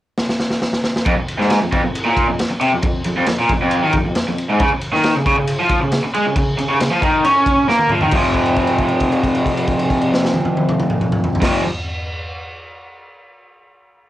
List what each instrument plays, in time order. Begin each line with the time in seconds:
0.18 snare
0.29 snare
0.40 snare
0.50 snare
0.62 snare
0.73 snare
0.84 snare
0.96 snare
1.06 overdriven electric guitar F2, kick, ride
1.17 muted overdriven electric guitar stroke
1.28 ride
1.39 overdriven electric guitar G#2, snare
1.50 snare, ride
1.61 overdriven electric guitar F2
1.72 overdriven electric guitar F2, kick, ride
1.84 overdriven electric guitar F2
1.95 ride
2.06 overdriven electric guitar A#2
2.17 kick, ride
2.28 overdriven electric guitar F2
2.39 snare, ride
2.50 muted overdriven electric guitar stroke
2.61 overdriven electric guitar C3, ride
2.72 overdriven electric guitar F2
2.82 overdriven electric guitar F2, kick, ride
3.04 overdriven electric guitar F2, ride
3.17 overdriven electric guitar F2
3.26 overdriven electric guitar F2, snare, ride
3.39 overdriven electric guitar A#2
3.49 overdriven electric guitar F2, kick, ride
3.61 overdriven electric guitar F2
3.71 ride
3.83 overdriven electric guitar D#3
3.93 overdriven electric guitar F2, kick, ride
4.05 overdriven electric guitar F2
4.15 snare, ride
4.28 overdriven electric guitar F2
4.38 ride
4.50 overdriven electric guitar G#2
4.60 overdriven electric guitar C#3, kick, ride
4.72 muted overdriven electric guitar stroke
4.81 ride
4.93 overdriven electric guitar D#3, snare
5.04 snare, ride
5.16 overdriven electric guitar C#3
5.26 overdriven electric guitar C#3, kick, ride
5.38 overdriven electric guitar C#3
5.47 ride
5.60 overdriven electric guitar F3
5.69 kick, ride
5.82 overdriven electric guitar C#3
5.92 snare, ride
6.05 muted overdriven electric guitar stroke
6.14 overdriven electric guitar G#3, ride
6.26 overdriven electric guitar C#3
6.36 overdriven electric guitar C#3, kick, ride
6.58 overdriven electric guitar C#3, ride
6.70 overdriven electric guitar C#3
6.80 overdriven electric guitar C#3, snare, ride
6.91 overdriven electric guitar F3
7.02 overdriven electric guitar D#3, kick, ride
7.24 overdriven electric guitar C#4, ride
7.46 kick, ride
7.69 overdriven electric guitar A#3, snare
7.79 high tom
7.89 overdriven electric guitar F3, mid tom
8.01 overdriven electric guitar D#3, floor tom
8.11 overdriven electric guitar F2 C3, kick, crash
8.16 overdriven electric guitar F3
8.34 kick, crash
8.46 crash
8.56 kick, crash
8.67 crash
8.78 kick, crash
8.88 crash
9.00 kick, crash
9.12 crash
9.24 kick, crash
9.35 crash
9.46 kick, crash
9.57 crash
9.67 kick, crash
9.79 crash
9.90 kick, crash
10.01 crash
10.14 snare
10.25 snare
10.34 high tom
10.45 high tom
10.57 high tom
10.69 mid tom
10.80 mid tom
10.90 mid tom
11.01 mid tom
11.12 mid tom
11.24 floor tom
11.35 floor tom
11.40 overdriven electric guitar F2 C3 F3, kick, snare, crash